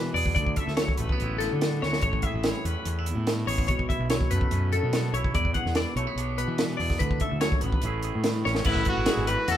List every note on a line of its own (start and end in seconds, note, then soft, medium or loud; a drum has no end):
0.00 0.37 E2 medium
0.00 0.35 B2 medium
0.00 0.11 E3 medium
0.00 0.80 E3 medium
0.00 0.64 B3 medium
0.00 0.35 D4 medium
0.00 0.16 G#4 soft
0.00 0.16 B4 medium
0.14 0.33 E2 medium
0.14 0.35 G#4 medium
0.14 0.34 D5 medium
0.14 open hi-hat medium
0.26 kick medium
0.35 0.54 D2 medium
0.35 2.01 D3 medium
0.35 0.57 D5 medium
0.35 kick medium
0.35 closed hi-hat medium
0.47 kick medium
0.56 0.76 E5 medium
0.56 kick medium
0.56 closed hi-hat medium
0.60 1.84 A4 soft
0.68 0.86 D2 medium
0.68 snare soft
0.77 2.02 F#3 medium
0.77 0.97 C#5 medium
0.77 snare loud
0.77 closed hi-hat medium
0.88 kick medium
0.97 1.08 A1 medium
0.97 1.12 A3 medium
0.97 1.40 B4 medium
0.97 closed hi-hat medium
1.09 2.04 B3 soft
1.09 kick medium
1.20 1.47 A1 medium
1.20 2.88 E4 medium
1.20 closed hi-hat medium
1.39 2.01 A2 medium
1.39 1.81 A4 medium
1.39 snare soft
1.39 closed hi-hat medium
1.53 1.79 D3 medium
1.61 snare medium
1.61 closed hi-hat medium
1.82 2.01 D2 medium
1.82 2.01 F#4 soft
1.82 2.01 C#5 medium
1.82 snare medium
1.93 snare medium
2.01 2.21 A1 medium
2.01 3.07 A2 medium
2.01 2.23 C#5 medium
2.01 kick loud
2.01 closed hi-hat medium
2.13 kick medium
2.22 2.45 E5 medium
2.22 kick medium
2.22 closed hi-hat medium
2.27 3.49 G#4 soft
2.34 2.52 A1 medium
2.44 4.12 E3 medium
2.44 2.65 C#5 medium
2.44 snare loud
2.44 closed hi-hat medium
2.65 2.74 E2 medium
2.65 2.88 C#4 medium
2.65 3.07 B4 medium
2.65 closed hi-hat medium
2.85 3.13 E2 medium
2.85 2.99 C#4 medium
2.85 closed hi-hat medium
2.99 3.70 E4 soft
3.06 3.70 E2 medium
3.06 closed hi-hat medium
3.15 3.43 A2 medium
3.27 snare loud
3.27 closed hi-hat medium
3.47 3.65 A1 medium
3.47 3.67 G#4 medium
3.47 3.67 C#5 medium
3.47 open hi-hat medium
3.58 kick medium
3.68 3.87 B1 medium
3.68 4.73 B2 medium
3.68 3.88 C#5 medium
3.68 kick medium
3.68 closed hi-hat medium
3.79 kick medium
3.89 5.15 E4 soft
3.89 4.10 E5 medium
3.89 kick medium
3.89 closed hi-hat medium
3.99 4.18 B1 medium
4.10 5.37 F#3 medium
4.10 4.31 C#5 medium
4.10 snare loud
4.10 closed hi-hat medium
4.21 kick medium
4.31 4.40 F#2 medium
4.31 5.36 A3 medium
4.31 4.72 B4 medium
4.31 closed hi-hat medium
4.41 kick medium
4.51 4.78 F#2 medium
4.51 closed hi-hat medium
4.55 5.36 C#4 medium
4.72 5.33 F#2 medium
4.72 5.14 A4 medium
4.72 closed hi-hat medium
4.83 5.10 B2 medium
4.93 snare medium
4.93 closed hi-hat medium
5.13 5.31 B1 medium
5.13 5.55 E4 medium
5.13 5.34 C#5 medium
5.13 closed hi-hat medium
5.24 kick medium
5.34 5.52 E2 medium
5.34 7.00 E2 medium
5.34 5.54 D5 medium
5.34 kick medium
5.34 closed hi-hat medium
5.45 kick medium
5.54 6.79 G#4 soft
5.54 5.75 F#5 medium
5.54 kick medium
5.54 closed hi-hat soft
5.66 5.84 E2 medium
5.66 snare soft
5.75 7.41 E3 medium
5.75 5.96 D5 medium
5.75 snare loud
5.75 closed hi-hat medium
5.96 6.05 B1 medium
5.96 6.07 A3 medium
5.96 6.38 C#5 medium
5.96 closed hi-hat medium
6.07 7.00 B3 medium
6.16 6.44 B1 medium
6.16 6.98 D4 medium
6.16 closed hi-hat medium
6.38 6.98 B2 medium
6.38 6.80 B4 medium
6.38 closed hi-hat medium
6.48 6.75 E3 medium
6.58 snare loud
6.58 closed hi-hat medium
6.77 6.98 E2 medium
6.77 6.98 G#4 medium
6.77 6.99 D5 medium
6.77 open hi-hat medium
6.90 kick medium
6.90 snare soft
6.99 7.19 D2 medium
6.99 7.81 D3 medium
6.99 7.21 B4 medium
6.99 kick medium
6.99 closed hi-hat medium
7.11 kick medium
7.20 7.81 A4 soft
7.20 7.40 E5 medium
7.20 kick medium
7.20 closed hi-hat medium
7.32 7.50 D2 medium
7.41 7.81 F#3 medium
7.41 7.61 C#5 medium
7.41 snare loud
7.41 closed hi-hat medium
7.52 kick medium
7.61 7.72 A1 medium
7.61 7.81 B3 medium
7.61 8.03 B4 medium
7.61 closed hi-hat medium
7.72 kick medium
7.82 8.10 A1 medium
7.82 8.63 A2 medium
7.82 8.23 E3 medium
7.82 8.45 C#4 medium
7.82 closed hi-hat medium
7.86 8.65 E4 medium
7.86 8.03 G#4 medium
8.03 8.64 G#4 medium
8.03 closed hi-hat medium
8.15 8.42 A2 medium
8.24 9.07 E3 medium
8.24 snare loud
8.24 closed hi-hat medium
8.45 8.64 A1 medium
8.45 8.64 C#4 medium
8.45 8.66 C#5 medium
8.45 snare soft
8.55 snare medium
8.64 8.84 A1 medium
8.64 9.57 A2 medium
8.64 8.86 E4 loud
8.64 9.07 B4 medium
8.64 kick loud
8.64 crash loud
8.75 kick medium
8.75 snare soft
8.85 8.97 C#4 medium
8.85 9.32 F#4 medium
8.85 kick medium
8.85 closed hi-hat medium
8.97 9.06 G#1 medium
8.97 9.48 E4 soft
9.06 9.57 E3 medium
9.06 9.27 G#4 medium
9.06 snare loud
9.06 closed hi-hat medium
9.17 9.35 G#1 medium
9.27 9.57 F#4 medium
9.27 9.49 B4 medium
9.27 closed hi-hat medium
9.48 9.57 E2 medium
9.48 9.57 C#4 medium
9.48 9.57 F#4 medium
9.48 9.57 A4 loud
9.48 closed hi-hat medium